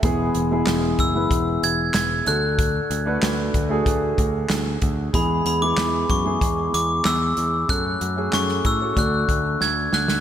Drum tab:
HH |x-x-x-x-x-x-x-x-|x-x-x-x-x-x-x-x-|x-x-x-x-x-x-x-x-|x-x-x-x-x-x-----|
CP |----x-------x---|----x-------x---|----x-------x---|----x-----------|
SD |----o-------o---|----o-------o---|----o-------o---|----oo------o-oo|
BD |o-----o-o-------|o-----o-o-o---o-|o-----o-o-------|o-----o-o-o-----|